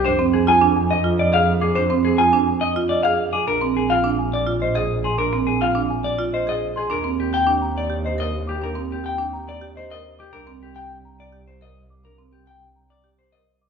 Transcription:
<<
  \new Staff \with { instrumentName = "Celesta" } { \time 3/4 \key f \dorian \tempo 4 = 105 r4 r16 aes''16 r8 ees''16 r8 d'''16 | r4 r16 aes''16 r8 ees''16 r8 d'''16 | r4 r16 aes''16 r8 ees''16 r8 c'''16 | r4 r16 aes''16 r8 ees''16 r8 c'''16 |
r4 r16 bes''16 r8 ees''16 r8 d'''16 | r4 r16 bes''16 r8 ees''16 r8 d'''16 | r4 r16 bes''16 r4 r16 d'''16 | r4 r16 bes''16 r4 r16 d'''16 | }
  \new Staff \with { instrumentName = "Clean electric guitar" } { \time 3/4 \key f \dorian c''16 r16 aes'16 aes''16 r8 ees''16 r16 d''16 f''16 r16 aes'16 | c''16 r16 aes'16 aes''16 r8 ees''16 r16 d''16 f''16 r16 aes'16 | bes'16 r16 aes'16 f''16 r8 d''16 r16 c''16 ees''16 r16 aes'16 | bes'16 r16 aes'16 f''16 r8 d''16 r16 c''16 ees''16 r16 aes'16 |
bes'16 r16 g'16 g''16 r8 d''16 r16 c''16 ees''16 r16 g'16 | bes'16 r16 g'16 g''16 r8 d''16 r16 c''16 ees''16 r16 g'16 | bes'16 r16 g'16 g''16 r8 d''16 r16 c''16 ees''16 r8 | bes'16 r16 g'16 g''16 r8 d''16 r16 c''16 ees''16 r8 | }
  \new Staff \with { instrumentName = "Marimba" } { \time 3/4 \key f \dorian d'16 c'16 r16 f'16 d'16 r8 f'16 r16 aes'16 r8 | d'16 c'16 r16 f'16 d'16 r8 f'16 r16 aes'16 r8 | d'16 c'16 r16 f'16 d'16 r8 f'16 r16 aes'16 r8 | d'16 c'16 r16 f'16 d'16 r8 f'16 r16 aes'16 r8 |
d'16 c'16 r16 g'16 d'16 r8 g'16 r16 bes'16 r8 | d'16 c'16 r16 g'16 d'16 r8 g'16 r16 bes'16 r8 | d'16 c'16 r16 g'16 r8. g'16 r16 bes'16 r8 | d'16 c'16 r16 g'16 r8. g'16 r16 bes'16 r8 | }
  \new Staff \with { instrumentName = "Double bass" } { \clef bass \time 3/4 \key f \dorian f,2.~ | f,2. | bes,,2.~ | bes,,2. |
ees,2.~ | ees,2. | c,2.~ | c,2. | }
>>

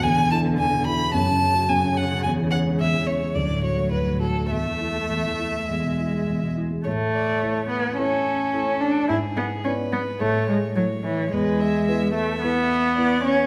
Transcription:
<<
  \new Staff \with { instrumentName = "Violin" } { \time 4/4 \key a \major \tempo 4 = 108 gis''8 a''8 gis''8 b''8 a''4 gis''8 fis''8 | gis''8 fis''8 e''8 cis''8 d''8 cis''8 b'8 a'8 | e''2.~ e''8 r8 | cis''8 d''8 cis''8 b'8 a'4 a'4 |
gis'4 b'4 cis''4 cis''4 | b'8 e''8 e''8 e''4. d''8 cis''8 | }
  \new Staff \with { instrumentName = "Cello" } { \time 4/4 \key a \major d2 cis2~ | cis2 fis2 | a2 gis4. r8 | a4. b8 cis'4. d'8 |
e'8 b8 cis'8 b8 a8 gis8 fis8 e8 | gis4. a8 b4. cis'8 | }
  \new Staff \with { instrumentName = "Grand piano" } { \time 4/4 \key a \major e,16 b,16 e'16 b16 e,16 b,16 e'16 b16 fis,16 cis16 cis'16 fis16 fis,16 cis16 cis'16 fis16 | e,16 e16 cis'16 gis16 e,16 e16 cis'16 gis16 d,16 a,16 fis'16 a16 d,16 a,16 fis'16 a16 | e,16 e16 e'16 a16 e,16 e16 e'16 a16 e,16 b,16 e'16 gis16 e,16 b,16 e'16 gis16 | a,4 <a e' cis''>4 <a e' cis''>4 <a e' cis''>4 |
gis,4 <b e' d''>4 a,4 <a e' cis''>4 | e,4 <b e' b'>4 <b e' b'>4 <b e' b'>4 | }
>>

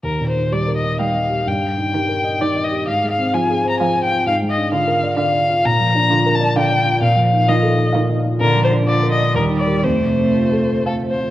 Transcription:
<<
  \new Staff \with { instrumentName = "Violin" } { \time 3/4 \key ees \major \tempo 4 = 129 bes'8 c''8 d''8 ees''8 f''4 | g''2 d''8 ees''8 | f''8 f''8 aes''8. bes''16 aes''8 g''8 | f''8 ees''8 f''4 f''4 |
\key bes \major bes''4. a''8 g''4 | f''4 ees''4 r4 | bes'8 c''8 d''8 ees''8 bes'8 d''8 | c''2 a'8 c''8 | }
  \new Staff \with { instrumentName = "Grand piano" } { \time 3/4 \key ees \major \tuplet 3/2 { ees,8 bes,8 ees'8 g'8 bes'8 ees''8 g''8 ees''8 g'8 } | \tuplet 3/2 { g,8 g8 ees'8 g'8 bes'8 ees''8 g''8 ees''8 g'8 } | \tuplet 3/2 { aes,8 aes8 c'8 f'8 aes'8 c''8 f''8 c''8 f'8 } | \tuplet 3/2 { aes,8 aes8 d'8 f'8 bes'8 d''8 f''8 d''8 f'8 } |
\key bes \major \tuplet 3/2 { bes,8 f8 d'8 f'8 bes'8 d''8 f''8 d''8 f'8 } | \tuplet 3/2 { bes,8 f8 ees'8 f'8 a'8 ees''8 f''8 ees''8 f'8 } | \tuplet 3/2 { bes,8 f8 d'8 f'8 bes'8 d''8 ees,8 ees'8 <g' bes'>8 } | \tuplet 3/2 { f,8 c8 c'8 f'8 a'8 c''8 f''8 c''8 f'8 } | }
  \new Staff \with { instrumentName = "Cello" } { \clef bass \time 3/4 \key ees \major r4 g4 g4 | r4 ees4 ees4 | r4 f4 f4 | r4 d4 d4 |
\key bes \major r4 d4 d4 | r4 ees4 ees4 | d4 d4 g4 | a2~ a8 r8 | }
>>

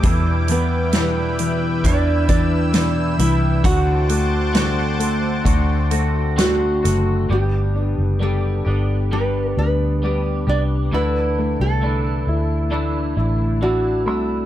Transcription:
<<
  \new Staff \with { instrumentName = "Analog synth pad" } { \time 4/4 \key g \major \tempo 4 = 66 << { d'''2 e'''2 | d'''1 | r1 | r1 | } \\ { <b' e'' g''>1 | <c'' fis'' a''>1 | r1 | r1 | } >> }
  \new Staff \with { instrumentName = "Nylon-string guitar" } { \time 4/4 \key g \major r8 <b b'>4. <d' d''>8 <d' d''>4 <e' e''>8 | <fis' fis''>2. fis'4 | g'4 a'4 b'8 b'4 d''8 | b'8. a'2~ a'16 fis'4 | }
  \new Staff \with { instrumentName = "Clean electric guitar" } { \time 4/4 \key g \major <e, b, e g d' e'>8 <e g d' e'>8 <e, b, e g d' e'>4 <e g d' e'>8 <e g d' e'>8 <e, b, e g d' e'>8 <e g d' e'>8 | <d a c' fis'>8 <a c' fis'>8 <d a c' fis'>4 <d a c' fis'>8 <a c' fis'>8 <d a c' fis'>8 <a c' fis'>8 | <g, d g b d' g'>4 <g b d' g'>8 <g b d' g'>8 <g, d g b d' g'>4 <g b d' g'>8 <g b d' g'>8 | <d e a d' e'>4 <e a d' e'>4 <d e a d' e'>4 <e a d' e'>8 <a d' e'>8 | }
  \new Staff \with { instrumentName = "Grand piano" } { \clef bass \time 4/4 \key g \major e8 e8 e8 e8 e8 e8 e8 e8 | d8 a8 d8 a8 d8 a8 d8 a8 | g8 d'8 g8 d'8 g8 d'8 g8 d'8 | d8 a8 d'8 e'8 d'8 e'8 d'8 a8 | }
  \new Staff \with { instrumentName = "Fingered electric bass" } { \clef bass \time 4/4 \key g \major e,2 e,4. c,8 | d,2 d,4. fis,,8 | g,,8. fis,,8. g,,4 d,4 c,8 | d,8. c,8. d,4 a,,4 c,8 | }
  \new DrumStaff \with { instrumentName = "Drums" } \drummode { \time 4/4 <hh bd>8 hh8 <hh sn>8 hh8 <hh bd>8 <hh bd>8 <hh sn>8 hh8 | <hh bd>8 hh8 <hh sn>8 hh8 <hh bd>8 hh8 <hh sn>8 <hh sn>8 | r4 r4 r4 r4 | r4 r4 r4 r4 | }
>>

